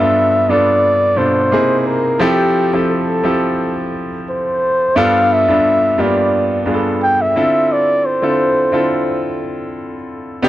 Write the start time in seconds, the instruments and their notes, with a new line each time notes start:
Already playing: flugelhorn E5
0.00 grand piano G2 B3 D4 F4 A4
0.49 grand piano G2 B3 D4 F4 A4, flugelhorn D5
1.16 grand piano G2 B2 D4 F4 A4, flugelhorn C5
1.51 grand piano C3 A#3 D#4 E4 G#4
1.80 flugelhorn C5
1.86 flugelhorn A#4
2.19 grand piano F3 C4 E4 G4 A4, flugelhorn G4
2.73 grand piano F3 C4 E4 G4 A4
2.91 flugelhorn A4
3.24 grand piano F3 C4 E4 G4 A4
4.29 flugelhorn C5
4.96 grand piano G2 B3 D4 F4 A4, flugelhorn F5
5.33 flugelhorn E5
5.48 grand piano G2 B3 D4 F4 A4
5.98 grand piano G2 A#3 D4 F4 G4, flugelhorn D5
6.05 grand piano B3
6.66 grand piano G2 B3 D4 F4 G#4
6.74 grand piano A4
7.03 flugelhorn G5
7.22 flugelhorn E5
7.36 grand piano D3 C4 E4 F4 A4
7.72 flugelhorn D5
8.05 flugelhorn C5
8.22 grand piano D3 C4 E4 F4 A4
8.72 grand piano D3 C4 E4 F4 A4
10.42 grand piano C3 B3 D4 D#4 G4